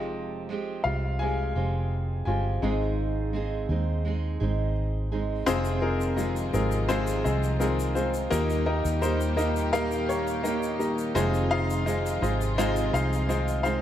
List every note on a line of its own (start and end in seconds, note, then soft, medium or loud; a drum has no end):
0.00 0.81 F1 medium
0.00 0.49 F2 medium
0.00 0.49 C3 medium
0.00 0.48 F3 medium
0.00 0.50 G#3 medium
0.00 0.81 G#3 soft
0.00 0.51 C4 medium
0.00 0.81 D#4 medium
0.00 0.81 F4 medium
0.00 0.50 G4 medium
0.00 0.80 G4 medium
0.00 0.88 D#5 medium
0.49 0.85 F3 medium
0.49 0.85 G#3 medium
0.49 0.84 C4 medium
0.49 0.83 G4 medium
0.84 1.52 C2 medium
0.84 1.18 F3 soft
0.84 1.20 G#3 soft
0.84 1.21 C4 soft
0.84 1.18 F4 medium
0.84 1.20 G4 soft
0.84 1.21 F5 medium
1.19 1.56 F3 medium
1.19 1.56 G#3 medium
1.19 2.24 G#3 medium
1.19 1.55 C4 medium
1.19 1.54 G4 medium
1.19 2.24 G#5 medium
1.55 2.23 F1 medium
1.55 2.28 F3 soft
1.55 2.28 G#3 medium
1.55 2.27 C4 medium
1.55 2.25 G4 medium
2.25 2.60 G1 medium
2.25 2.62 F3 medium
2.25 2.61 G#3 soft
2.25 2.62 C4 medium
2.25 4.72 F4 medium
2.25 2.62 G4 medium
2.25 4.71 G#5 medium
2.62 3.65 G#1 medium
2.62 3.34 G#2 medium
2.62 5.47 D#3 medium
2.62 5.43 G#3 medium
2.62 3.33 G#3 medium
2.62 5.43 C4 soft
2.62 3.34 C4 medium
2.62 5.43 D#4 medium
2.62 3.35 D#4 medium
2.62 3.36 G#4 medium
3.33 3.69 G#3 medium
3.33 3.70 C4 medium
3.33 3.69 D#4 medium
3.33 3.68 G#4 medium
3.69 4.36 D#2 medium
3.69 4.04 G#3 soft
3.69 4.04 C4 soft
3.69 4.05 D#4 soft
3.69 4.05 G#4 soft
4.05 4.40 G#3 medium
4.05 4.41 C4 medium
4.05 4.40 D#4 medium
4.05 4.39 G#4 medium
4.40 5.44 G#1 medium
4.40 5.14 G#3 medium
4.40 5.13 C4 soft
4.40 5.12 D#4 medium
4.40 5.11 G#4 medium
5.12 5.47 G#3 medium
5.12 5.47 C4 soft
5.12 5.48 D#4 soft
5.12 5.47 G#4 medium
5.46 6.50 F1 medium
5.46 6.18 F2 loud
5.46 6.50 C3 medium
5.46 8.29 C3 medium
5.46 6.18 C3 loud
5.46 6.17 D#3 medium
5.46 8.28 F3 medium
5.46 8.28 G#3 medium
5.46 6.17 G#3 medium
5.46 5.78 C4 loud
5.46 6.18 C4 loud
5.46 5.78 D#4 loud
5.46 13.82 D#4 medium
5.46 5.78 F4 loud
5.46 8.28 F4 medium
5.46 5.78 G#4 loud
5.46 6.19 G#4 loud
5.46 5.78 C5 loud
5.46 shaker medium
5.65 shaker medium
5.81 6.13 C4 medium
5.81 6.13 D#4 medium
5.81 6.13 F4 medium
5.81 6.13 G#4 medium
5.81 6.13 A#4 loud
6.01 shaker soft
6.17 6.53 D#3 medium
6.17 6.54 G#3 medium
6.17 6.48 C4 medium
6.17 6.53 C4 medium
6.17 6.48 D#4 medium
6.17 6.48 F4 medium
6.17 6.48 G#4 medium
6.17 6.52 G#4 medium
6.17 6.48 D#5 medium
6.17 shaker medium
6.36 shaker medium
6.53 7.21 G#1 medium
6.53 6.88 D#3 soft
6.53 6.89 G#3 soft
6.53 6.85 C4 medium
6.53 6.89 C4 medium
6.53 6.85 D#4 medium
6.53 6.85 F4 medium
6.53 6.89 G#4 medium
6.53 6.85 G#4 medium
6.53 6.85 A#4 loud
6.53 shaker medium
6.72 shaker medium
6.88 7.60 F2 medium
6.88 7.61 C3 loud
6.88 7.59 D#3 loud
6.88 7.60 G#3 medium
6.88 7.20 C4 loud
6.88 7.61 C4 loud
6.88 7.20 D#4 loud
6.88 7.20 F4 loud
6.88 7.20 G#4 loud
6.88 7.61 G#4 loud
6.88 7.20 C5 loud
6.88 shaker medium
7.07 shaker medium
7.24 8.28 C2 medium
7.24 7.56 C4 medium
7.24 7.56 D#4 medium
7.24 7.56 F4 medium
7.24 7.56 G#4 medium
7.24 7.56 D#5 loud
7.24 shaker medium
7.43 shaker soft
7.60 7.96 D#3 medium
7.60 7.96 G#3 medium
7.60 7.91 C4 medium
7.60 7.95 C4 medium
7.60 7.91 D#4 medium
7.60 7.91 F4 medium
7.60 7.91 G#4 medium
7.60 7.94 G#4 medium
7.60 7.91 A#4 medium
7.60 shaker medium
7.79 shaker medium
7.94 8.30 D#3 soft
7.94 8.31 G#3 medium
7.94 8.26 C4 medium
7.94 8.32 C4 medium
7.94 8.26 D#4 medium
7.94 8.26 F4 medium
7.94 8.26 G#4 medium
7.94 8.31 G#4 medium
7.94 8.26 C5 loud
7.94 shaker medium
8.14 shaker medium
8.30 8.81 D#2 medium
8.30 9.34 A#2 medium
8.30 11.13 A#2 medium
8.30 9.01 D#3 medium
8.30 11.13 D#3 medium
8.30 11.13 G3 medium
8.30 8.62 A#3 loud
8.30 9.01 A#3 medium
8.30 8.62 D#4 loud
8.30 9.03 D#4 loud
8.30 8.62 G4 loud
8.30 11.13 G4 medium
8.30 9.03 G4 loud
8.30 8.62 A#4 loud
8.30 8.62 D#5 loud
8.30 shaker medium
8.50 shaker soft
8.66 8.97 A#3 loud
8.66 8.98 D#4 medium
8.66 8.98 G4 medium
8.66 8.98 A#4 loud
8.66 8.98 D#5 loud
8.85 11.12 D#2 loud
8.85 shaker medium
9.01 9.38 D#3 medium
9.01 9.33 A#3 medium
9.01 9.38 A#3 medium
9.01 9.33 D#4 medium
9.01 9.37 D#4 medium
9.01 9.33 G4 medium
9.01 9.36 G4 medium
9.01 9.33 A#4 medium
9.01 9.33 C5 loud
9.01 shaker medium
9.21 shaker medium
9.37 9.68 A#3 loud
9.37 9.73 A#3 soft
9.37 9.68 D#4 medium
9.37 9.73 D#4 medium
9.37 9.68 G4 medium
9.37 9.73 G4 medium
9.37 9.68 A#4 medium
9.37 9.69 D#5 loud
9.37 shaker medium
9.56 shaker medium
9.73 10.44 D#3 medium
9.73 10.04 A#3 loud
9.73 10.44 A#3 loud
9.73 10.04 D#4 loud
9.73 10.46 D#4 loud
9.73 10.04 G4 loud
9.73 10.45 G4 loud
9.73 10.04 A#4 loud
9.73 10.04 F5 loud
9.73 shaker medium
9.91 shaker medium
10.09 10.40 A#3 medium
10.09 10.40 D#4 medium
10.09 10.40 G4 medium
10.09 10.40 A#4 medium
10.09 10.40 C#5 loud
10.09 shaker medium
10.27 shaker soft
10.43 11.16 D#3 medium
10.43 10.75 A#3 medium
10.43 11.16 A#3 medium
10.43 10.75 D#4 medium
10.43 11.16 D#4 medium
10.43 10.75 G4 medium
10.43 11.17 G4 medium
10.43 10.75 A#4 medium
10.43 10.75 D#5 loud
10.43 shaker medium
10.63 shaker medium
10.79 11.11 A#3 medium
10.79 11.11 D#4 medium
10.79 11.11 G4 medium
10.79 11.11 A#4 medium
10.79 11.11 D#5 loud
10.79 shaker medium
10.98 shaker medium
11.15 12.18 F1 loud
11.15 11.87 F2 medium
11.15 12.18 C3 medium
11.15 11.87 C3 loud
11.15 13.82 C3 medium
11.15 11.85 D#3 loud
11.15 13.82 F3 medium
11.15 11.86 G#3 loud
11.15 13.82 G#3 medium
11.15 11.87 C4 loud
11.15 11.46 D#4 loud
11.15 11.46 F4 loud
11.15 13.82 F4 loud
11.15 11.88 F4 loud
11.15 11.46 G#4 loud
11.15 11.46 C5 loud
11.15 11.46 D#5 loud
11.15 shaker medium
11.34 shaker medium
11.51 11.82 D#4 loud
11.51 11.82 F4 loud
11.51 11.82 G#4 medium
11.51 11.82 C5 medium
11.51 11.82 F5 loud
11.70 shaker medium
11.86 12.22 D#3 medium
11.86 12.22 G#3 medium
11.86 12.21 C4 medium
11.86 12.17 D#4 medium
11.86 12.17 F4 medium
11.86 12.20 F4 medium
11.86 12.17 G#4 medium
11.86 12.17 C5 medium
11.86 12.17 D#5 loud
11.86 shaker medium
12.06 shaker medium
12.21 12.90 G#1 medium
12.21 12.57 D#3 medium
12.21 12.57 G#3 medium
12.21 12.58 C4 medium
12.21 12.53 D#4 medium
12.21 12.58 F4 medium
12.21 12.53 F4 medium
12.21 12.53 G#4 medium
12.21 12.53 C5 medium
12.21 12.53 D#5 loud
12.21 shaker medium
12.41 shaker medium
12.57 13.29 F2 loud
12.57 13.29 C3 loud
12.57 13.27 D#3 medium
12.57 13.28 G#3 loud
12.57 13.29 C4 loud
12.57 12.89 D#4 loud
12.57 12.89 F4 loud
12.57 13.29 F4 loud
12.57 12.89 G#4 loud
12.57 12.89 C5 loud
12.57 12.89 D#5 loud
12.57 shaker medium
12.76 shaker medium
12.93 13.82 C2 loud
12.93 13.24 D#4 loud
12.93 13.24 F4 medium
12.93 13.24 G#4 medium
12.93 13.24 C5 medium
12.93 13.25 F5 loud
12.93 shaker medium
13.13 shaker soft
13.28 13.64 D#3 medium
13.28 13.65 G#3 medium
13.28 13.64 C4 medium
13.28 13.60 D#4 loud
13.28 13.60 F4 medium
13.28 13.62 F4 medium
13.28 13.60 G#4 medium
13.28 13.60 C5 medium
13.28 13.60 D#5 loud
13.28 shaker medium
13.48 shaker medium
13.63 13.82 D#3 soft
13.63 13.82 G#3 medium
13.63 13.82 C4 medium
13.63 13.82 D#4 medium
13.63 13.82 F4 medium
13.63 13.82 G#4 medium
13.63 13.82 C5 medium
13.63 13.82 F5 loud
13.63 shaker soft